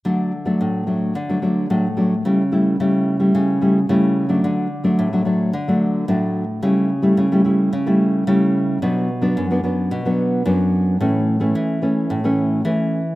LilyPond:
\new Staff \with { instrumentName = "Nylon-string guitar" } { \time 4/4 \key d \major \tempo 4 = 110 << { <fis a d'>8 r16 <fis a d'>8. <fis a d'>8 r16 <fis a d'>16 <fis a d'>8 <fis a d'>16 r16 <fis a d'>16 r16 | <g a e'>16 r16 <g a e'>8 <g a e'>8. <g a e'>8. <g a e'>16 r16 <g a e'>8. <fis a d'>16~ | <fis a d'>8 r16 <fis a d'>8 <fis a d'>16 <fis a d'>8 r16 <fis a d'>8. <fis a d'>8. r16 | <g a e'>8 r16 <g a e'>8 <g a e'>16 <g a e'>8 r16 <g a e'>8. <g a e'>4 |
<fis b d'>8 r16 <fis b d'>8 <fis b d'>16 <fis b d'>8. <fis b d'>8. <fis b d'>4 | <e a cis'>8. <e a cis'>8. <e a cis'>8. <e a cis'>8. <e a cis'>8. r16 | } \\ { d4 a,4 d4 a,4 | cis4 cis4 cis4 cis4 | d4 a,4 d4 a,4 | cis4 cis4 cis4 cis4 |
b,4 fis,4 b,4 fis,4 | a,4 e4 a,4 e4 | } >> }